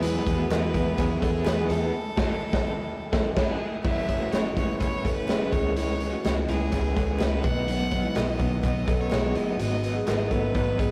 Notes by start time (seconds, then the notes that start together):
Already playing: E2
0.02 E3 F#3 G#3 B3 E4 G#4 B4 B5, closed hi-hat
0.26 E2 B3 E4 G#4, kick, closed hi-hat
0.38 A3 F#4
0.49 E2 E3 F#3 B3 E4 G#4 B4 B5, snare, clap, closed hi-hat
0.74 E2 G#3 B3 E4 G#4, kick, closed hi-hat
0.97 E2 F#3 B3 E4 G#4 B4 G#5, kick, clap, closed hi-hat
1.21 E2 B3 C#4 E4 G#4 A4, kick, closed hi-hat
1.45 E2 E3 F#3 B3 E4 G#4 B4 B5, snare, clap, closed hi-hat
1.68 E2 B3 E4 G#4 A4 A5, closed hi-hat
2.17 F#1 E3 A3 C#4 F#4 A4, kick, snare, crash
2.53 F#1 F#2 C#3 E3 A3 C#4 A4, kick, snare
3.12 F#1 E3 A3 C#4 A4, kick, snare
3.36 F#1 F#2 C#3 E3 A3 C#4 E4 G#4 A4 C#5, kick, snare, crash
3.84 F#1 F#2 C#3 E3 A3 C#4 E4 E5, kick, crash
4.08 E3 A3 C#4, kick, closed hi-hat
4.21 A3 F#4
4.32 F#1 F#2 C#3 E3 A3 C#4 C#5, snare, clap, closed hi-hat
4.56 F#1 E3 G#3 A3 C#4 E4 C#5, kick, closed hi-hat
4.79 F#1 C#3 E3 A3 C#4 E4 B4 C#5, kick, clap, closed hi-hat
5.04 F#1 E3 A3 C#4 A4, kick, closed hi-hat
5.16 B4
5.28 F#1 F#2 C#3 E3 A3 C#4 G#4, snare, clap, closed hi-hat
5.51 C#2 E3 G#3 C#4 C#5, kick, closed hi-hat
5.76 C#3 E3 G#3 C#4 E4 C#5, closed hi-hat
6.00 E3 G#3 C#4, closed hi-hat
6.12 A3 F#4
6.24 C#2 C#3 E3 G#3 C#4 C#5, snare, clap, closed hi-hat
6.48 C#2 E3 G#3 C#4 E4 G#4, closed hi-hat
6.72 C#2 C#3 E3 G#3 C#4 E4 B4, kick, clap, closed hi-hat
6.96 C#2 E3 G#3 C#4 A4, kick, closed hi-hat
7.19 C#2 C#3 E3 G#3 C#4 D#4 B4, snare, clap, closed hi-hat
7.43 B1 F#3 B3 D#4 F#5, kick, closed hi-hat
7.68 B2 F#3 B3 D#4, closed hi-hat
7.91 F#3 B3 D#4, kick, closed hi-hat
8.04 G#3 E4
8.15 B1 B2 F#3 B3 D#4 D#5, snare, clap, closed hi-hat
8.39 B1 F#3 B3 D#4, kick, closed hi-hat
8.63 B1 B2 F#3 B3 D#4 B4 D#5, kick, clap, closed hi-hat
8.88 B1 F#3 B3 C#4 D#4 A4, kick, closed hi-hat
9.00 C#5
9.11 B1 B2 F#3 B3 D#4 G#4, snare, clap, closed hi-hat
9.35 F#3 B3 D#4 D#5, closed hi-hat
9.59 G#1 G#2 D#3 F#3 B3 D#4 F#4 D#5, closed hi-hat
9.82 F#3 B3 D#4, closed hi-hat
9.95 B3 G#4
10.06 G#1 G#2 D#3 F#3 B3 D#4 D#5, snare, clap, closed hi-hat
10.30 G#1 F#3 B3 C#4 D#4 A4 B4, kick, closed hi-hat
10.54 G#1 D#3 F#3 B3 D#4 B4, kick, closed hi-hat
10.78 G#1 F#3 B3 D#4 G#4, kick, closed hi-hat